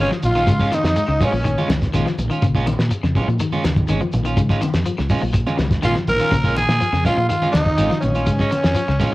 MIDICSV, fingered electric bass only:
0, 0, Header, 1, 3, 480
1, 0, Start_track
1, 0, Key_signature, -5, "minor"
1, 0, Tempo, 487409
1, 463, Time_signature, 4, 2, 24, 8
1, 9005, End_track
2, 0, Start_track
2, 0, Title_t, "Fingered electric bass"
2, 0, Program_c, 0, 33
2, 227, Note_on_c, 0, 34, 98
2, 440, Note_off_c, 0, 34, 0
2, 460, Note_on_c, 0, 44, 113
2, 676, Note_off_c, 0, 44, 0
2, 822, Note_on_c, 0, 41, 89
2, 929, Note_off_c, 0, 41, 0
2, 1065, Note_on_c, 0, 37, 82
2, 1170, Note_off_c, 0, 37, 0
2, 1306, Note_on_c, 0, 34, 88
2, 1519, Note_off_c, 0, 34, 0
2, 1665, Note_on_c, 0, 37, 91
2, 1878, Note_off_c, 0, 37, 0
2, 1902, Note_on_c, 0, 34, 89
2, 2011, Note_off_c, 0, 34, 0
2, 2146, Note_on_c, 0, 34, 84
2, 2253, Note_off_c, 0, 34, 0
2, 2383, Note_on_c, 0, 34, 91
2, 2706, Note_off_c, 0, 34, 0
2, 2750, Note_on_c, 0, 46, 98
2, 2852, Note_off_c, 0, 46, 0
2, 2987, Note_on_c, 0, 41, 88
2, 3091, Note_off_c, 0, 41, 0
2, 3227, Note_on_c, 0, 46, 95
2, 3330, Note_off_c, 0, 46, 0
2, 3587, Note_on_c, 0, 39, 93
2, 3799, Note_off_c, 0, 39, 0
2, 3825, Note_on_c, 0, 32, 97
2, 3932, Note_off_c, 0, 32, 0
2, 4071, Note_on_c, 0, 34, 98
2, 4281, Note_off_c, 0, 34, 0
2, 4299, Note_on_c, 0, 44, 99
2, 4514, Note_off_c, 0, 44, 0
2, 4666, Note_on_c, 0, 41, 85
2, 4770, Note_off_c, 0, 41, 0
2, 4916, Note_on_c, 0, 37, 94
2, 5015, Note_off_c, 0, 37, 0
2, 5148, Note_on_c, 0, 34, 92
2, 5360, Note_off_c, 0, 34, 0
2, 5502, Note_on_c, 0, 37, 98
2, 5716, Note_off_c, 0, 37, 0
2, 5743, Note_on_c, 0, 34, 96
2, 5850, Note_off_c, 0, 34, 0
2, 5983, Note_on_c, 0, 34, 88
2, 6091, Note_off_c, 0, 34, 0
2, 6220, Note_on_c, 0, 34, 101
2, 6544, Note_off_c, 0, 34, 0
2, 6583, Note_on_c, 0, 46, 97
2, 6688, Note_off_c, 0, 46, 0
2, 6821, Note_on_c, 0, 41, 93
2, 6927, Note_off_c, 0, 41, 0
2, 7065, Note_on_c, 0, 46, 94
2, 7169, Note_off_c, 0, 46, 0
2, 7433, Note_on_c, 0, 39, 86
2, 7642, Note_off_c, 0, 39, 0
2, 7670, Note_on_c, 0, 32, 100
2, 7774, Note_off_c, 0, 32, 0
2, 7914, Note_on_c, 0, 34, 93
2, 8122, Note_off_c, 0, 34, 0
2, 8141, Note_on_c, 0, 44, 110
2, 8355, Note_off_c, 0, 44, 0
2, 8514, Note_on_c, 0, 41, 84
2, 8614, Note_off_c, 0, 41, 0
2, 8748, Note_on_c, 0, 37, 89
2, 8851, Note_off_c, 0, 37, 0
2, 9005, End_track
3, 0, Start_track
3, 0, Title_t, "Muted fingered electric bass strokes"
3, 111, Note_on_c, 9, 29, 40
3, 209, Note_off_c, 9, 29, 0
3, 700, Note_on_c, 9, 29, 36
3, 798, Note_off_c, 9, 29, 0
3, 2870, Note_on_c, 9, 29, 39
3, 2968, Note_off_c, 9, 29, 0
3, 3465, Note_on_c, 9, 29, 38
3, 3563, Note_off_c, 9, 29, 0
3, 3956, Note_on_c, 9, 29, 39
3, 4055, Note_off_c, 9, 29, 0
3, 4552, Note_on_c, 9, 29, 39
3, 4651, Note_off_c, 9, 29, 0
3, 6698, Note_on_c, 9, 29, 37
3, 6797, Note_off_c, 9, 29, 0
3, 7309, Note_on_c, 9, 29, 38
3, 7408, Note_off_c, 9, 29, 0
3, 7798, Note_on_c, 9, 29, 37
3, 7897, Note_off_c, 9, 29, 0
3, 8395, Note_on_c, 9, 29, 37
3, 8494, Note_off_c, 9, 29, 0
3, 9005, End_track
0, 0, End_of_file